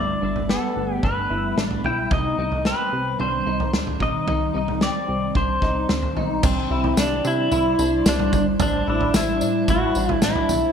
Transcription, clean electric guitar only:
0.00 0.21 D4 medium
0.22 0.49 D4 medium
0.49 1.03 B3 medium
1.03 1.30 D4 medium
1.30 1.57 E4 medium
1.57 1.84 D4 medium
1.85 2.12 E4 medium
2.11 2.37 D#4 medium
2.38 2.65 D#4 medium
2.66 3.19 C4 medium
3.19 3.46 D4 medium
3.46 3.73 D#4 medium
3.73 4.00 D4 medium
4.00 4.26 D#4 medium
4.27 4.53 D#4 medium
4.54 4.81 D#4 medium
4.81 5.35 C4 medium
5.35 5.62 D4 medium
5.62 5.89 D#4 medium
5.89 6.16 D4 medium
6.16 6.43 D#4 medium
6.44 6.71 D4 medium
6.71 6.98 E4 medium
6.98 7.24 D4 medium
7.25 7.52 D4 medium
7.52 7.79 E4 medium
7.79 8.05 D4 medium
8.06 8.59 D4 medium
8.60 8.87 D4 medium
8.87 9.14 E4 medium
9.14 9.40 D4 medium
9.41 9.68 D4 medium
9.69 9.96 E4 medium
9.96 10.22 D4 medium
10.23 10.72 D4 medium

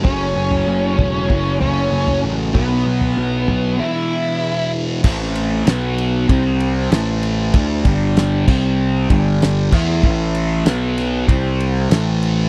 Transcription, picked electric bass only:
0.05 0.35 F#1 medium
0.36 0.66 F#1 medium
0.67 0.97 F#1 medium
0.99 1.29 E1 medium
1.30 1.60 F#1 medium
1.61 1.91 F#1 medium
1.92 2.22 F#1 medium
2.24 2.54 A1 medium
2.55 2.85 B1 medium
2.86 3.16 B1 medium
3.17 3.47 B1 medium
3.49 3.79 B1 medium
5.04 5.63 A1 loud
5.67 6.25 B1 medium
6.29 6.88 C2 medium
6.92 7.50 A1 medium
7.54 7.83 D2 loud
7.86 8.44 G1 medium
8.48 9.06 C2 loud
9.10 9.69 G1 medium
9.73 10.01 E2 medium
10.04 10.62 A1 loud
10.66 11.24 B1 medium
11.29 11.87 C2 medium
11.91 12.49 A1 loud

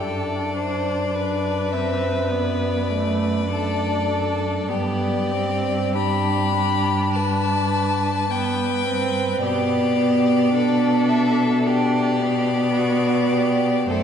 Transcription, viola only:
0.00 1.15 D4 soft
1.15 1.75 D4 soft
1.73 2.33 C4 soft
2.31 2.91 B3 soft
2.89 3.49 A3 soft
3.50 4.70 D4 soft
4.69 5.33 B3 soft
5.31 5.97 C4 soft
5.95 6.56 D4 medium
6.56 8.27 D4 soft
8.31 8.86 B3 soft
8.87 9.44 C4 medium
9.42 9.97 B3 medium
9.98 10.53 B3 soft
10.54 11.63 D4 medium
11.65 12.21 D4 medium
12.20 13.90 B3 medium
13.90 14.03 A3 medium

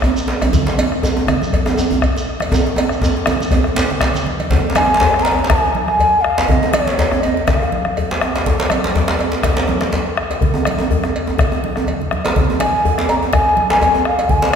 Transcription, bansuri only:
4.76 5.24 G#5 medium
5.23 5.48 A#5 medium
5.47 5.84 G#5 medium
5.85 6.23 G#5 medium
6.21 6.46 F5 medium
6.47 6.72 D#5 medium
6.71 7.23 C#5 medium
7.21 7.48 D#5 medium
7.46 7.96 F5 medium
12.60 13.05 G#5 medium
13.09 13.15 A#5 loud
13.33 13.68 G#5 loud
13.70 14.03 G#5 medium
14.06 14.32 F5 medium
14.30 14.54 G#5 medium

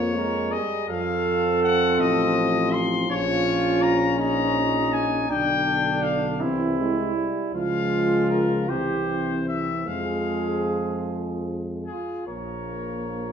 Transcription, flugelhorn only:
0.00 0.15 F4 medium
0.17 0.53 A#4 medium
0.52 0.88 G#4 medium
0.88 2.78 A4 loud
3.10 4.15 F4 medium
4.19 5.31 D#4 medium
5.30 6.42 D4 medium
6.41 7.54 E4 medium
7.55 8.71 F4 medium
8.69 9.57 G4 medium
9.87 11.62 G#4 medium
11.87 12.24 F4 soft
12.27 13.32 A#4 medium

